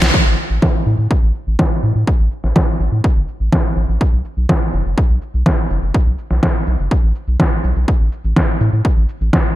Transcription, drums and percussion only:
0.02 snare medium
0.02 closed hi-hat medium
0.02 cabasa soft
0.14 kick loud
0.14 crash medium
0.14 cabasa soft
0.26 cabasa soft
0.38 cabasa medium
0.62 kick loud
0.62 snare loud
0.86 cabasa medium
0.99 cabasa soft
1.11 kick loud
1.35 cabasa medium
1.47 cabasa soft
1.59 kick loud
1.59 snare loud
1.83 cabasa medium
1.95 cabasa soft
2.07 kick loud
2.32 cabasa medium
2.44 snare soft
2.44 cabasa soft
2.56 kick loud
2.56 snare loud
2.80 cabasa medium
2.92 cabasa soft
3.04 kick loud
3.28 cabasa medium
3.40 cabasa soft
3.53 kick loud
3.53 snare loud
3.77 cabasa medium
3.89 cabasa soft
4.01 kick loud
4.25 cabasa medium
4.37 cabasa soft
4.49 kick loud
4.49 snare loud
4.73 cabasa medium
4.86 cabasa soft
4.98 kick loud
5.22 cabasa medium
5.34 cabasa soft
5.46 kick loud
5.46 snare loud
5.70 cabasa medium
5.82 cabasa soft
5.94 kick loud
6.18 cabasa medium
6.31 snare soft
6.31 cabasa soft
6.43 kick loud
6.43 snare loud
6.67 cabasa medium
6.79 cabasa soft
6.91 kick loud
7.15 cabasa medium
7.27 cabasa soft
7.40 kick loud
7.40 snare loud
7.64 cabasa medium
7.76 cabasa soft
7.88 kick loud
8.12 cabasa medium
8.24 cabasa soft
8.36 kick loud
8.36 snare loud
8.61 cabasa medium
8.73 cabasa soft
8.85 kick loud
8.97 cabasa soft
9.09 cabasa medium
9.21 cabasa soft
9.33 kick loud
9.33 snare loud
9.45 cabasa soft

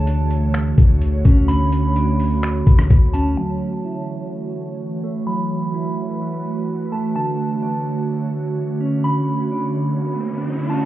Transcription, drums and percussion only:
0.07 closed hi-hat medium
0.31 closed hi-hat medium
0.54 finger snap loud
0.54 closed hi-hat medium
0.78 kick loud
0.78 closed hi-hat medium
1.02 closed hi-hat medium
1.25 kick medium
1.25 closed hi-hat medium
1.49 closed hi-hat medium
1.72 closed hi-hat medium
1.96 closed hi-hat medium
2.20 open hi-hat medium
2.43 finger snap loud
2.43 closed hi-hat medium
2.67 kick loud
2.67 closed hi-hat medium
2.79 cross-stick medium
2.90 kick loud
2.90 closed hi-hat medium
3.14 closed hi-hat medium

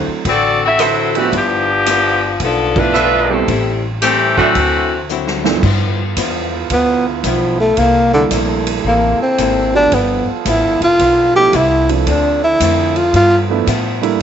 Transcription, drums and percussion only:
0.25 kick soft
0.25 ride medium
0.79 hi-hat pedal medium
0.79 ride medium
1.15 ride soft
1.32 kick soft
1.32 ride medium
1.86 hi-hat pedal medium
1.86 ride medium
2.40 kick soft
2.40 ride medium
2.76 kick medium
2.76 crash medium
2.94 hi-hat pedal medium
3.48 kick soft
3.48 ride medium
4.02 hi-hat pedal medium
4.02 ride medium
4.38 kick medium
4.55 kick soft
4.55 ride medium
5.09 hi-hat pedal soft
5.27 snare medium
5.45 snare medium
5.63 kick medium
5.63 crash medium
6.16 kick soft
6.16 hi-hat pedal medium
6.16 ride medium
6.70 kick soft
6.70 ride medium
7.24 kick soft
7.24 hi-hat pedal medium
7.24 ride medium
7.77 kick soft
7.77 ride medium
8.31 kick soft
8.31 hi-hat pedal medium
8.31 ride medium
8.67 ride medium
8.85 kick soft
9.38 kick soft
9.38 hi-hat pedal medium
9.38 ride medium
9.92 kick soft
9.92 ride medium
10.45 kick soft
10.45 hi-hat pedal medium
10.45 ride medium
10.82 ride soft
10.99 kick soft
10.99 ride medium
11.53 kick soft
11.53 hi-hat pedal soft
11.53 ride medium
11.89 ride medium
12.07 kick soft
12.07 ride medium
12.60 kick soft
12.60 hi-hat pedal medium
12.60 ride medium
12.96 ride soft
13.14 kick soft
13.14 ride medium
13.67 kick soft
13.67 hi-hat pedal medium
13.67 ride medium
14.03 ride soft

